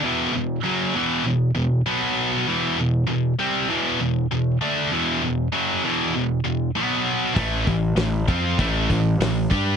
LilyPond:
<<
  \new Staff \with { instrumentName = "Distorted electric guitar" } { \clef bass \time 4/4 \key e \minor \tempo 4 = 98 <e, b, e>8 <e, b,>8 <fis, cis fis>8 <e, b, e>8 <e, b,>8 <e, b,>8 <b, fis b>4 | <e, b, e>8 <e, b,>8 <e, b,>8 <c g c'>8 <e, b, e>8 <e, b,>8 <e, b,>8 <d a d'>8 | <e, b, e>8 <e, b,>8 <fis, cis fis>8 <e, b, e>8 <e, b,>8 <e, b,>8 <b, fis b>4 | <a, e a>8 <a, e>8 <a, e>8 <f c' f'>8 <a, e a>8 <a, e>8 <a, e>8 <g d' g'>8 | }
  \new Staff \with { instrumentName = "Picked electric bass" } { \clef bass \time 4/4 \key e \minor r1 | r1 | r1 | a,,8 a,,8 a,,8 f,8 a,,8 a,,8 a,,8 g,8 | }
  \new DrumStaff \with { instrumentName = "Drums" } \drummode { \time 4/4 r4 r4 r4 r4 | r4 r4 r4 r4 | r4 r4 r4 r4 | <hho bd>8 <hho bd>8 <hho sn>8 <hho bd>8 <hho bd>8 <hho bd>8 <hho sn>8 <hho bd>8 | }
>>